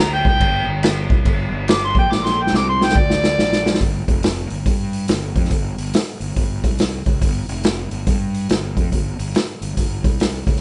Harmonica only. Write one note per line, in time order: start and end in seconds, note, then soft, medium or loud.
0.00 0.12 A#5 loud
0.13 0.26 G5 loud
0.28 0.68 G5 loud
1.70 1.83 D6 loud
1.84 1.97 C6 loud
1.99 2.15 G5 loud
2.13 2.28 D6 loud
2.26 2.44 C6 loud
2.42 2.54 G5 medium
2.56 2.68 D6 loud
2.69 2.86 C6 medium
2.84 3.00 G5 loud
2.98 3.80 D5 loud